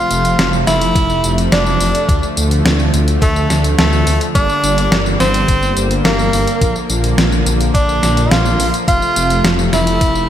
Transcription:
0.00 2.07 C3 medium
0.00 4.31 F3 medium
0.00 4.31 A3 medium
0.00 0.56 F4 loud
0.00 0.56 F5 loud
0.11 0.35 F1 medium
0.11 closed hi-hat medium
0.11 tambourine medium
0.25 closed hi-hat medium
0.25 tambourine soft
0.39 0.63 F1 medium
0.39 snare loud
0.39 closed hi-hat loud
0.39 tambourine soft
0.53 tambourine soft
0.67 0.91 F1 medium
0.67 1.41 E4 loud
0.67 1.41 E5 loud
0.67 snare medium
0.67 closed hi-hat medium
0.67 tambourine medium
0.81 closed hi-hat medium
0.81 tambourine soft
0.95 1.20 F1 medium
0.95 kick loud
0.95 closed hi-hat medium
0.95 tambourine soft
1.10 tambourine soft
1.24 1.48 F1 medium
1.24 closed hi-hat medium
1.24 tambourine medium
1.38 closed hi-hat medium
1.38 tambourine soft
1.52 1.76 F1 medium
1.52 2.26 D4 loud
1.52 2.26 D5 loud
1.52 snare loud
1.52 closed hi-hat medium
1.52 tambourine soft
1.66 tambourine soft
1.81 1.93 F1 medium
1.81 open hi-hat medium
1.81 tambourine medium
1.95 closed hi-hat medium
1.95 tambourine soft
2.09 2.21 D2 loud
2.09 4.33 D3 medium
2.09 kick loud
2.09 closed hi-hat loud
2.09 tambourine soft
2.23 tambourine soft
2.37 2.61 D2 medium
2.37 closed hi-hat medium
2.37 tambourine medium
2.51 closed hi-hat medium
2.51 tambourine soft
2.66 2.90 D2 medium
2.66 snare loud
2.66 closed hi-hat medium
2.66 tambourine soft
2.80 tambourine soft
2.94 3.18 D2 medium
2.94 closed hi-hat medium
2.94 tambourine medium
3.08 closed hi-hat medium
3.08 tambourine soft
3.22 3.46 D2 medium
3.22 3.68 A3 medium
3.22 3.68 A4 medium
3.22 kick loud
3.22 closed hi-hat loud
3.22 tambourine soft
3.36 tambourine soft
3.50 3.74 D2 medium
3.50 snare medium
3.50 closed hi-hat medium
3.50 tambourine medium
3.64 closed hi-hat medium
3.64 tambourine soft
3.79 4.03 D2 medium
3.79 4.25 A3 medium
3.79 4.25 A4 medium
3.79 snare loud
3.79 closed hi-hat medium
3.79 tambourine soft
3.93 tambourine soft
4.07 4.19 D2 medium
4.07 open hi-hat medium
4.07 tambourine medium
4.21 closed hi-hat medium
4.21 tambourine soft
4.35 4.47 G1 loud
4.35 6.59 D3 medium
4.35 6.59 G3 medium
4.35 8.84 A#3 medium
4.35 5.09 D4 loud
4.35 5.09 D5 medium
4.35 kick loud
4.35 closed hi-hat medium
4.35 tambourine soft
4.49 tambourine soft
4.63 4.88 G1 medium
4.63 closed hi-hat medium
4.63 tambourine medium
4.78 closed hi-hat medium
4.78 tambourine soft
4.92 5.16 G1 medium
4.92 snare loud
4.92 closed hi-hat medium
4.92 tambourine soft
5.06 tambourine soft
5.20 5.44 G1 medium
5.20 5.94 C4 loud
5.20 5.94 C5 loud
5.20 snare medium
5.20 closed hi-hat medium
5.20 tambourine medium
5.34 closed hi-hat medium
5.34 tambourine soft
5.48 5.72 G1 medium
5.48 kick loud
5.48 closed hi-hat medium
5.48 tambourine soft
5.63 tambourine soft
5.77 6.01 G1 medium
5.77 closed hi-hat medium
5.77 tambourine medium
5.91 closed hi-hat medium
5.91 tambourine soft
6.05 6.29 G1 medium
6.05 6.79 A#3 loud
6.05 6.79 A#4 medium
6.05 snare loud
6.05 closed hi-hat medium
6.05 tambourine soft
6.19 tambourine soft
6.33 6.45 G1 medium
6.33 open hi-hat medium
6.33 tambourine medium
6.47 closed hi-hat medium
6.47 tambourine soft
6.61 6.74 A#1 loud
6.61 8.86 D3 medium
6.61 10.29 F3 medium
6.61 kick loud
6.61 closed hi-hat medium
6.61 tambourine soft
6.76 tambourine soft
6.90 7.14 A#1 medium
6.90 closed hi-hat medium
6.90 tambourine medium
7.04 closed hi-hat medium
7.04 tambourine soft
7.18 7.42 A#1 medium
7.18 snare loud
7.18 closed hi-hat medium
7.18 tambourine soft
7.32 tambourine soft
7.46 7.70 A#1 medium
7.46 closed hi-hat medium
7.46 tambourine medium
7.61 closed hi-hat medium
7.61 tambourine soft
7.74 7.99 A#1 medium
7.74 8.33 D4 loud
7.74 8.31 D5 medium
7.74 kick loud
7.74 closed hi-hat medium
7.74 tambourine soft
7.89 tambourine soft
8.03 8.27 A#1 medium
8.03 snare medium
8.03 closed hi-hat medium
8.03 tambourine medium
8.17 closed hi-hat medium
8.17 tambourine soft
8.31 8.55 A#1 medium
8.31 8.77 F4 medium
8.31 8.77 F5 medium
8.31 snare loud
8.31 closed hi-hat medium
8.31 tambourine soft
8.46 tambourine soft
8.59 8.72 A#1 medium
8.59 open hi-hat medium
8.59 tambourine medium
8.74 closed hi-hat medium
8.74 tambourine soft
8.88 9.00 F1 loud
8.88 10.29 C3 medium
8.88 10.29 A3 medium
8.88 9.62 F4 loud
8.88 9.62 F5 loud
8.88 kick loud
8.88 closed hi-hat loud
8.88 tambourine soft
9.02 tambourine soft
9.16 9.40 F1 medium
9.16 closed hi-hat medium
9.16 tambourine medium
9.30 closed hi-hat medium
9.30 tambourine soft
9.45 9.69 F1 medium
9.45 snare loud
9.45 closed hi-hat medium
9.45 tambourine soft
9.59 tambourine soft
9.73 9.97 F1 medium
9.73 10.29 E4 loud
9.73 10.29 E5 loud
9.73 snare medium
9.73 closed hi-hat medium
9.73 tambourine medium
9.87 closed hi-hat medium
9.87 tambourine soft
10.01 10.25 F1 medium
10.01 kick loud
10.01 closed hi-hat medium
10.01 tambourine soft
10.15 tambourine soft

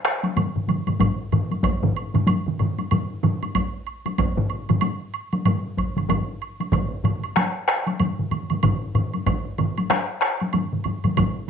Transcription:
0.05 taiko rim medium
0.05 high woodblock soft
0.23 taiko high medium
0.23 high woodblock soft
0.36 taiko low-mid medium
0.36 taiko mid medium
0.36 taiko high medium
0.36 high woodblock soft
0.55 taiko low-mid medium
0.55 taiko mid medium
0.68 taiko low-mid medium
0.68 taiko mid medium
0.68 taiko high soft
0.68 high woodblock soft
0.87 taiko low-mid medium
0.87 taiko mid medium
0.87 taiko high soft
0.87 high woodblock soft
1.00 taiko medium
1.00 taiko low-mid medium
1.00 taiko mid medium
1.00 taiko high medium
1.00 high woodblock medium
1.32 taiko low-mid medium
1.32 taiko mid medium
1.32 high woodblock soft
1.51 taiko high soft
1.51 high woodblock soft
1.63 taiko medium
1.63 taiko high medium
1.63 high woodblock soft
1.83 taiko low-mid loud
1.83 taiko mid medium
1.97 high woodblock soft
2.14 taiko low-mid medium
2.14 taiko mid medium
2.14 taiko high medium
2.14 high woodblock soft
2.27 taiko low-mid medium
2.27 taiko mid medium
2.27 taiko high medium
2.27 high woodblock soft
2.46 taiko low-mid medium
2.46 taiko mid medium
2.59 taiko low-mid medium
2.59 taiko mid medium
2.59 high woodblock soft
2.78 taiko high soft
2.78 high woodblock soft
2.91 taiko low-mid medium
2.91 taiko mid medium
2.91 taiko high medium
2.91 high woodblock soft
3.23 taiko low-mid medium
3.23 taiko mid medium
3.23 taiko high soft
3.23 high woodblock soft
3.43 taiko high soft
3.43 high woodblock soft
3.55 taiko medium
3.55 taiko high medium
3.55 high woodblock medium
3.87 high woodblock soft
4.06 taiko high medium
4.06 high woodblock soft
4.18 taiko loud
4.18 taiko high medium
4.18 high woodblock soft
4.37 taiko low-mid medium
4.37 taiko mid medium
4.50 high woodblock soft
4.69 taiko low-mid medium
4.69 taiko mid medium
4.69 taiko high soft
4.69 high woodblock soft
4.81 taiko high medium
4.81 high woodblock medium
5.14 high woodblock soft
5.33 taiko high medium
5.33 high woodblock soft
5.45 taiko low-mid medium
5.45 taiko mid medium
5.45 taiko high medium
5.45 high woodblock soft
5.77 taiko medium
5.77 taiko high soft
5.77 high woodblock soft
5.96 taiko low-mid medium
5.96 taiko mid medium
5.96 taiko high soft
5.96 high woodblock soft
6.09 taiko medium
6.09 taiko low-mid medium
6.09 taiko mid medium
6.09 taiko high medium
6.09 high woodblock medium
6.42 high woodblock soft
6.60 taiko high soft
6.60 high woodblock soft
6.72 taiko medium
6.72 taiko low-mid medium
6.72 taiko mid medium
6.72 taiko high medium
6.72 high woodblock medium
7.04 taiko low-mid medium
7.04 taiko mid medium
7.04 high woodblock soft
7.24 high woodblock soft
7.36 taiko rim medium
7.36 taiko high medium
7.36 high woodblock medium
7.68 taiko rim medium
7.68 high woodblock soft
7.87 taiko high medium
7.87 high woodblock soft
8.00 taiko low-mid medium
8.00 taiko mid medium
8.00 taiko high medium
8.00 high woodblock soft
8.19 taiko low-mid medium
8.19 taiko mid medium
8.31 taiko low-mid medium
8.31 taiko mid medium
8.31 taiko high soft
8.31 high woodblock soft
8.50 taiko low-mid medium
8.50 taiko mid medium
8.50 taiko high soft
8.50 high woodblock soft
8.63 taiko medium
8.63 taiko low-mid medium
8.63 taiko mid medium
8.63 taiko high medium
8.63 high woodblock medium
8.95 taiko low-mid medium
8.95 taiko mid medium
8.95 high woodblock soft
9.14 taiko high soft
9.14 high woodblock soft
9.26 taiko medium
9.26 taiko low-mid medium
9.26 taiko mid medium
9.26 taiko high medium
9.26 high woodblock medium
9.58 taiko low-mid medium
9.58 taiko mid medium
9.58 high woodblock soft
9.78 taiko high medium
9.78 high woodblock soft
9.90 taiko rim medium
9.90 taiko high medium
9.90 high woodblock soft
10.21 taiko rim medium
10.21 high woodblock soft
10.40 taiko high soft
10.40 high woodblock soft
10.53 taiko low-mid medium
10.53 taiko mid medium
10.53 taiko high medium
10.53 high woodblock soft
10.72 taiko low-mid medium
10.72 taiko mid medium
10.84 taiko low-mid medium
10.84 taiko mid medium
10.84 taiko high soft
10.84 high woodblock soft
11.04 taiko low-mid medium
11.04 taiko mid medium
11.04 taiko high medium
11.04 high woodblock soft
11.17 taiko medium
11.17 taiko low-mid medium
11.17 taiko mid medium
11.17 taiko high medium
11.17 high woodblock medium

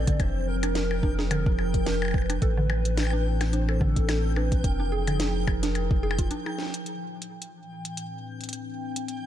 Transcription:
0.00 0.17 A1 medium
0.00 0.20 A2 medium
0.00 0.20 E3 medium
0.00 1.09 C4 medium
0.00 0.20 D4 loud
0.00 4.64 G4 medium
0.00 0.20 B4 medium
0.00 0.21 D5 loud
0.00 6.85 G5 medium
0.07 0.19 D3 loud
0.07 kick loud
0.07 closed hi-hat medium
0.20 2.39 F1 medium
0.20 2.42 F3 medium
0.20 0.47 C5 loud
0.20 kick loud
0.20 closed hi-hat medium
0.20 percussion blips medium
0.47 2.42 D#4 medium
0.47 2.16 A#4 loud
0.63 0.73 D4 medium
0.63 closed hi-hat medium
0.63 percussion blips medium
0.75 2.42 G#4 medium
0.75 snare loud
0.75 closed hi-hat soft
0.91 percussion blips medium
1.03 1.15 D4 medium
1.03 kick medium
1.19 1.28 G#4 medium
1.19 2.42 A#4 loud
1.19 snare medium
1.31 1.46 D3 loud
1.31 closed hi-hat soft
1.31 percussion blips medium
1.46 kick loud
1.59 percussion blips medium
1.74 kick medium
1.74 closed hi-hat medium
1.86 1.99 D4 medium
1.86 snare loud
1.86 closed hi-hat soft
2.02 percussion blips medium
2.05 percussion blips medium
2.08 percussion blips soft
2.11 kick loud
2.11 percussion blips soft
2.14 3.52 B4 loud
2.14 percussion blips soft
2.18 percussion blips soft
2.22 percussion blips soft
2.26 closed hi-hat medium
2.26 percussion blips soft
2.30 2.39 D4 medium
2.30 percussion blips medium
2.42 4.62 A1 medium
2.42 4.64 A2 medium
2.42 2.54 A4 medium
2.42 kick loud
2.42 closed hi-hat medium
2.56 2.69 D3 loud
2.56 4.64 D4 medium
2.67 4.64 E3 medium
2.67 percussion blips medium
2.80 4.64 B4 medium
2.85 closed hi-hat medium
2.89 5.54 C4 medium
2.97 snare loud
2.97 closed hi-hat medium
2.97 percussion blips soft
3.00 percussion blips soft
3.03 percussion blips soft
3.05 percussion blips soft
3.10 3.23 D4 medium
3.10 percussion blips soft
3.41 snare medium
3.41 closed hi-hat medium
3.41 percussion blips medium
3.53 3.65 D4 medium
3.53 3.82 C5 loud
3.53 closed hi-hat soft
3.69 3.78 A4 medium
3.69 percussion blips medium
3.81 3.96 D3 loud
3.81 4.38 A4 loud
3.81 kick medium
3.96 kick medium
3.96 closed hi-hat medium
4.09 snare loud
4.09 closed hi-hat medium
4.09 percussion blips medium
4.36 4.49 D4 medium
4.36 4.65 B4 medium
4.36 percussion blips medium
4.52 kick loud
4.52 closed hi-hat medium
4.64 6.31 F1 loud
4.64 6.86 F3 loud
4.64 4.93 A#4 loud
4.64 kick loud
4.64 closed hi-hat medium
4.74 6.86 D#4 medium
4.78 4.89 D4 medium
4.78 6.86 G#4 loud
4.92 5.75 G#4 medium
4.92 5.04 G#4 medium
4.92 9.26 G5 medium
5.07 5.19 D3 loud
5.07 6.86 A#4 medium
5.07 closed hi-hat medium
5.07 percussion blips medium
5.20 snare loud
5.20 closed hi-hat medium
5.47 kick medium
5.47 percussion blips medium
5.63 5.73 D4 medium
5.63 snare medium
5.63 closed hi-hat medium
5.75 closed hi-hat medium
5.75 percussion blips medium
5.91 kick loud
6.03 6.18 G#4 loud
6.11 percussion blips medium
6.19 6.28 F4 medium
6.19 kick medium
6.19 closed hi-hat medium
6.31 6.46 D4 medium
6.31 closed hi-hat medium
6.46 6.56 D#4 medium
6.46 percussion blips medium
6.58 snare medium
6.62 snare soft
6.66 snare soft
6.70 snare soft
6.70 closed hi-hat medium
6.86 9.09 A2 medium
6.86 9.26 G5 medium
6.86 closed hi-hat medium
7.11 9.09 E3 medium
7.22 closed hi-hat medium
7.29 9.26 C4 medium
7.42 closed hi-hat medium
7.85 9.09 D4 medium
7.85 9.09 B4 medium
7.85 closed hi-hat medium
7.97 closed hi-hat medium
8.41 closed hi-hat soft
8.44 closed hi-hat soft
8.49 closed hi-hat medium
8.53 closed hi-hat medium
8.96 closed hi-hat medium
9.08 9.26 F3 medium
9.08 closed hi-hat medium
9.22 9.26 D#4 loud
9.22 9.26 G#4 medium

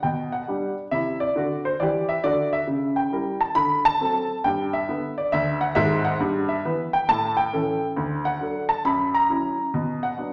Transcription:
0.03 0.41 B2 medium
0.03 0.28 G5 medium
0.32 0.83 F#5 medium
0.48 0.72 G3 medium
0.48 0.73 D4 medium
0.48 0.73 G4 soft
0.91 1.27 C3 medium
0.91 1.29 E4 medium
0.91 1.16 E5 medium
1.20 1.58 D5 medium
1.36 1.71 D3 medium
1.36 1.72 F#4 medium
1.65 1.78 C5 medium
1.80 2.16 E3 medium
1.80 2.17 G4 medium
1.80 2.04 D5 medium
2.09 2.22 E5 medium
2.24 2.59 D3 medium
2.24 2.60 F#4 medium
2.24 2.48 D5 loud
2.53 2.66 E5 medium
2.67 3.05 C#3 medium
2.96 3.34 G5 medium
3.12 3.36 G3 soft
3.12 3.37 E4 soft
3.12 3.37 A#4 soft
3.41 3.54 A5 medium
3.55 3.93 D3 medium
3.55 3.80 B5 loud
3.85 4.36 A5 loud
4.00 4.25 F#3 medium
4.00 4.25 C4 medium
4.00 4.25 A4 medium
4.44 4.83 G2 medium
4.44 4.69 G5 medium
4.73 5.11 E5 medium
4.89 5.13 D3 medium
4.89 5.13 B3 medium
4.89 5.14 B4 medium
5.18 5.31 D5 medium
5.32 5.70 D2 medium
5.32 5.57 E5 loud
5.61 5.74 F#5 medium
5.75 6.11 G#1 medium
5.75 6.12 G#2 medium
5.75 6.01 E5 loud
6.05 6.18 F#5 loud
6.20 6.58 G2 medium
6.49 6.87 E5 medium
6.65 6.89 E3 medium
6.65 6.90 B3 medium
6.65 6.90 B4 medium
6.93 7.07 G5 medium
7.09 7.46 A2 medium
7.09 7.34 A5 loud
7.37 7.88 G5 medium
7.53 7.78 E3 medium
7.53 7.78 C#4 medium
7.53 7.78 A4 medium
7.96 8.34 D2 medium
8.25 8.63 F#5 loud
8.41 8.65 F#3 soft
8.41 8.65 D4 medium
8.41 8.66 A4 soft
8.69 8.83 A5 medium
8.85 9.23 F#2 medium
8.85 9.10 B5 medium
9.14 9.65 A#5 medium
9.30 9.54 F#3 soft
9.30 9.54 C#4 medium
9.30 9.55 E4 medium
9.74 10.11 B2 medium
10.03 10.33 F#5 medium
10.18 10.33 F#3 soft
10.18 10.33 B3 soft
10.18 10.33 D4 soft

